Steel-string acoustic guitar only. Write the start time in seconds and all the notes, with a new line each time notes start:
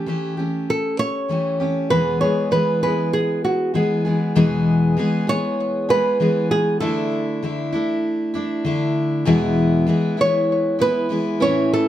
0.06 E3 A3 C#4 G4
0.37 A3 C#4 G4
1.29 E3 A3 C#4 G4
1.60 A3 C#4 G4
1.90 E2 B2 E3 G#3 B3 G#4
2.21 E3 G#3 B3 G#4
2.51 E3 G#3 B3 G#4
2.83 E3 G#3 B3 G#4
3.74 E3 G#3 B3 G#4
4.05 E3 G#3 B3 G#4
4.35 E2 B2 E3 G#3 B3 G#4
4.97 E3 G#3 B3 G#4
5.27 E3 G#3 B3 G#4
5.89 E3 G#3 B3 G#4
6.20 E3 G#3 B3 G#4
6.80 D3 A3 D4 E4
7.42 D3 A3 D4 E4
7.73 A3 D4 E4
8.34 A3 D4 E4
8.65 D3 A3 D4 E4
9.25 E2 B2 E3 G#3 B3 E4
9.87 E3 G#3 B3 E4
10.17 E3 G#3 B3 E4
10.79 E3 G#3 B3 E4
11.09 E3 G#3 B3 E4
11.40 A2 E3 A3 C#4 E4